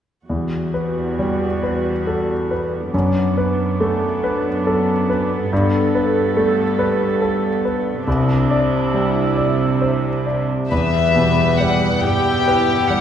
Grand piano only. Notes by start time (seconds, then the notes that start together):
0.30 E2
0.74 B4
1.19 G3
1.63 B4
2.07 A4
2.51 B4
2.94 F#2
3.37 B4
3.80 A3
4.24 B4
4.67 A4
5.09 B4
5.53 G2
5.95 B4
6.37 A3
6.79 B4
7.22 A4
7.65 B4
8.08 C2
8.50 D5
8.94 G3
9.37 D5
9.81 C5
10.26 D5
10.72 E2
11.16 B2
11.60 G3
12.03 G4
12.47 B4
12.90 G3